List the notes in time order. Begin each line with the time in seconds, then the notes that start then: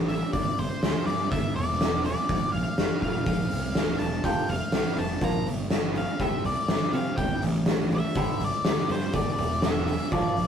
Already playing: A1
0.08 E5, open hi-hat
0.33 G1 D5, kick, open hi-hat
0.58 G1 C5, open hi-hat
0.83 D2, snare, open hi-hat
1.06 G2 D5, open hi-hat
1.31 G1 E5, kick, open hi-hat
1.55 E1 D5, open hi-hat
1.81 snare, open hi-hat
2.05 D5, open hi-hat
2.29 A#1, kick, open hi-hat
2.52 A#1 F5, open hi-hat
2.78 F1, snare, open hi-hat
3.01 A#2 F5, kick, open hi-hat
3.26 A#1, kick, open hi-hat
3.51 C2, open hi-hat
3.75 D1, snare, open hi-hat
3.99 E1 A5, open hi-hat
4.24 F1 F2 C3 F3 G5, kick, open hi-hat
4.49 F1 F2 C3 F5, open hi-hat
4.72 C2 F2 C3, snare, open hi-hat
4.97 F1 F2 C3 A5, open hi-hat
5.21 A#1 A#2 F3 A#3 A#5, kick, open hi-hat
5.46 G1 A#2 F3, open hi-hat
5.70 A#2 F3, snare, open hi-hat
5.95 A#2 F3 F5, open hi-hat
6.20 C2 C3 G3 C4 E5, kick, open hi-hat
6.45 C2 C3 G3 D5, open hi-hat
6.68 G1 C3 G3, snare, open hi-hat
6.93 C3 G3 F5, open hi-hat
7.17 C2 C3 G3 G5, kick, open hi-hat
7.42 A1 C3 G3, open hi-hat
7.66 C3 G3, snare, open hi-hat
7.91 C3 G3 E5, open hi-hat
8.15 G1 G2 D3 G3, kick, open hi-hat
8.40 G1 G2 D3, open hi-hat
8.44 D5
8.65 D2 G2 D3, snare, open hi-hat
8.89 G2 D3 C5, open hi-hat
9.13 G1 G2 D3 D5, kick, open hi-hat
9.38 E1 G2 D3, open hi-hat
9.62 G2 D3 E5, snare, open hi-hat
9.88 G2 D3, open hi-hat
10.12 A#1 A#2 F3 A#3 D5, kick, open hi-hat
10.37 A#1 A#2, open hi-hat